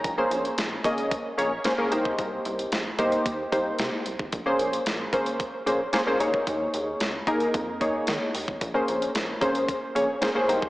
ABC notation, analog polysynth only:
X:1
M:4/4
L:1/16
Q:1/4=112
K:Bbdor
V:1 name="Analog polysynth"
b [B,DAc]3 z2 [B,DAe]2 z2 [B,DAd] z [B,DAc] [B,DAB] [B,EGc]2- | [B,EGc]4 z2 [B,EGc]2 z2 [B,EGc]4 z2 | z [B,DAc]3 z2 [B,DAc]2 z2 [B,DAc] z [B,DAc] [B,DAc] [B,EAd]2- | [B,EAd]4 z2 [B,EAB]2 z2 [B,EAd]4 z2 |
z [B,DAc]3 z2 [B,DAc]2 z2 [B,DAd] z [B,DAc] [B,DAc] [B,EGc]2 |]